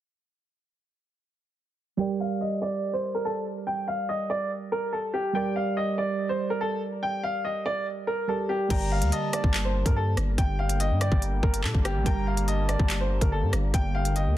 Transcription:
1.97 G3 G4 A#4 D5 G5
2.20 F5
2.41 D#5
2.62 D5
2.93 C5
3.15 A#4
3.25 A4
3.67 G5
3.88 F5
4.09 D#5
4.30 D5
4.72 A#4
4.93 A4
5.14 G4
5.33 G3 G4 A#4 D5 G5
5.56 F5
5.77 D#5
5.98 D5
6.29 C5
6.50 A#4
6.61 A4
7.03 G5
7.23 F5
7.45 D#5
7.66 D5
8.07 A#4
8.27 G3 G4 A4 A#4 D5
8.49 G4
8.68 G1 D3 G3 A#3 G4 A#4 D5 G5 A#5, kick, closed hi-hat, crash
8.92 F5
9.02 D2, closed hi-hat
9.12 D#5 A5, closed hi-hat
9.33 D5, cross-stick, closed hi-hat
9.44 G1, kick
9.54 clap, closed hi-hat
9.65 C5
9.86 G2 A#4, kick, closed hi-hat
9.96 A4
10.17 G1, cross-stick, closed hi-hat
10.38 G1 G5, kick, closed hi-hat
10.59 F5 G5
10.69 closed hi-hat
10.80 D#5, closed hi-hat
10.91 G2
11.01 D5 G5, cross-stick, closed hi-hat
11.12 G1, kick
11.22 closed hi-hat
11.43 G1 A#4, kick
11.54 closed hi-hat
11.64 A#2 A4, clap
11.74 G1, kick
11.85 G4, cross-stick, closed hi-hat
11.95 A1
12.04 G1 G3 G4 A#4 G5 A#5, kick, closed hi-hat
12.27 F5
12.37 closed hi-hat
12.48 D#5 A5, closed hi-hat
12.69 D5, cross-stick, closed hi-hat
12.79 G1, kick
12.90 clap, closed hi-hat
13.00 C5
13.21 G1 A#4, kick, closed hi-hat
13.32 A4
13.42 G2
13.53 G1, cross-stick, closed hi-hat
13.74 G1 G5, kick, closed hi-hat
13.95 F5 G5
14.05 closed hi-hat
14.16 D#5, closed hi-hat
14.26 D2

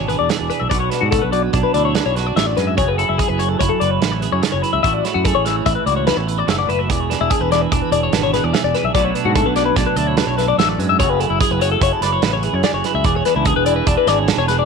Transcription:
Already playing: G#1 E2 B2 E3 D4
0.09 G#4 B4, closed hi-hat
0.19 E2 D5
0.29 E2 G#4 E5, snare, closed hi-hat
0.39 E1 D5
0.50 D4 B4, closed hi-hat
0.60 B1 E5
0.70 B1 B2 F#4 D5, kick, closed hi-hat
0.80 C#5
0.90 D4 B4, snare, closed hi-hat
1.01 G#2 F#4
1.11 F#4 A4, kick, closed hi-hat
1.22 B1 B4
1.32 F#3 D5, closed hi-hat
1.43 B4
1.53 B1 D4 D5, kick, closed hi-hat
1.63 B4
1.74 D2 E4 D5, closed hi-hat
1.85 C#5
1.95 F#2 D4 B4, snare, closed hi-hat
2.06 B1 C#5
2.16 F#4 B4, snare, closed hi-hat
2.27 D5
2.36 A1 A2 E5, snare, closed hi-hat
2.46 D5
2.57 F#2 G#2 B4, snare, closed hi-hat
2.67 E5
2.77 F#1 F#2 G#4 C#5, kick, closed hi-hat
2.88 B4
2.98 E4 A4, closed hi-hat
3.09 F#1 E4
3.18 G#4, kick, closed hi-hat
3.28 F#1 B4
3.39 F#3 C#5, closed hi-hat
3.49 A4
3.59 F#1 E4 C#5, kick, closed hi-hat
3.69 A4
3.80 F#1 B4 D5, closed hi-hat
3.91 C#5
4.00 A1 C#3 E4 B4, snare, closed hi-hat
4.12 C#5
4.21 G#4 B4, closed hi-hat
4.32 F#2 C#5
4.42 F#2 G#4 D5, snare, closed hi-hat
4.52 F#1 C#5
4.62 E4 B4, closed hi-hat
4.73 C#2 E5
4.83 A1 A2 F#4 E5, kick, closed hi-hat
4.94 D5
5.05 E4 C#5, snare, closed hi-hat
5.14 F#2 F#4
5.24 G#4 A4, kick, closed hi-hat
5.35 A1 C#5
5.45 E3 E5, snare, closed hi-hat
5.56 C#5
5.66 A1 E4 E5, kick, closed hi-hat
5.75 B4
5.86 C#2 F#4 D5, closed hi-hat
5.96 C#5
6.07 E2 E4 B4, snare, closed hi-hat
6.17 A1 C#5
6.27 E4 B4, closed hi-hat
6.38 F#4 D5
6.47 F#1 A2 F#4 E5, snare, closed hi-hat
6.59 D5
6.68 F#1 E4 B4, closed hi-hat
6.79 E5
6.89 E1 E2 G#4 D5, kick, closed hi-hat
7.00 C#5
7.10 D4 B4, snare, closed hi-hat
7.21 E1 E4
7.30 G#4, kick, closed hi-hat
7.41 E1 B4
7.51 E3 D5, snare, closed hi-hat
7.62 B4
7.72 E1 D4 D5, kick, closed hi-hat
7.82 B4
7.92 E1 G#4 D5, closed hi-hat
8.03 C#5
8.13 G#1 B2 D4 B4, snare, closed hi-hat
8.23 C#5
8.33 G#4 B4, snare, closed hi-hat
8.44 E2 D5
8.52 E2 G#4 E5, snare, closed hi-hat
8.64 E1 D5
8.74 D4 B4, snare, closed hi-hat
8.84 B1 E5
8.94 B1 B2 F#3 A3 D4 F#4 D5, kick, closed hi-hat
9.05 C#5
9.15 D4 B4, closed hi-hat
9.25 G#2 F#4
9.35 E4 A4, kick, closed hi-hat
9.45 B1 F#4 B4
9.56 F#3 D5, snare, closed hi-hat
9.65 B4
9.76 B1 D4 D5, kick, snare, closed hi-hat
9.87 B4
9.96 D2 E4 D5, closed hi-hat
10.07 C#5
10.17 F#2 D4 B4, snare, closed hi-hat
10.27 B1 C#5
10.38 E4 B4, snare, closed hi-hat
10.48 F#4 D5
10.58 A1 A2 E5, snare, closed hi-hat
10.69 D5
10.78 F#2 G#2 B4, closed hi-hat
10.89 E5
10.99 F#1 F#2 G#4 C#5, kick, closed hi-hat
11.10 B4
11.20 E4 A4, closed hi-hat
11.30 F#1 E4
11.40 G#4, kick, closed hi-hat
11.51 F#1 B4
11.60 F#3 C#5, closed hi-hat
11.72 A4
11.81 F#1 E4 C#5, kick, closed hi-hat
11.92 A4
12.01 F#1 B4 D5, snare, closed hi-hat
12.13 C#5
12.22 A1 C#3 E4 B4, snare, closed hi-hat
12.33 C#5
12.43 G#4 B4, closed hi-hat
12.53 F#2 C#5
12.63 F#2 G#4 D5, snare, closed hi-hat
12.73 F#1 C#5
12.84 E4 B4, snare, closed hi-hat
12.94 C#2 E5
13.04 E1 E2 G#4 D5, kick, closed hi-hat
13.16 C#5
13.25 D4 B4, snare, closed hi-hat
13.36 C#2 E4
13.45 G#4, kick, closed hi-hat
13.56 E1 B4
13.66 E3 D5, closed hi-hat
13.76 B4
13.87 E1 D4 D5, kick, closed hi-hat
13.97 B4
14.07 G#1 G#4 D5, snare, closed hi-hat
14.19 C#5
14.28 B2 D4 B4, snare, closed hi-hat
14.37 E1 C#5
14.48 G#4 B4, snare, closed hi-hat
14.59 D5

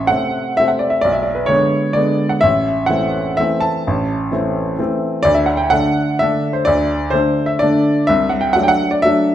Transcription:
Already playing: A1 E5
0.07 C3 A3 C4 F#5
0.57 C3 A3 C4 E5
0.68 F#5
0.79 D5
0.90 E5
1.01 B1 D5
1.12 E5
1.23 D5
1.35 B4
1.46 D3 G#3 B3 C#5
1.93 D3 G#3 B3 D5
2.29 F#5
2.41 A1 E5
2.86 E3 A3 F#5
2.90 C4
3.37 E3 A3 C4 E5
3.60 A5
3.87 A1
4.32 E3 A3 C4
4.79 E3 A3 C4
5.23 D2 D5
5.35 E5
5.46 F#5
5.57 G5
5.70 D3 A3 D4 F#5
6.19 D3 A3 D4 E5
6.53 C5
6.65 D2 D5
7.10 D3 A3 D4 C5
7.46 E5
7.59 D3 A3 D4 D5
8.07 C2 E5
8.30 F#5
8.41 G5
8.53 F#3 A3 D4 F#5
8.63 G5
8.68 F#5
8.91 D5
9.02 F#3 A3 D4 E5

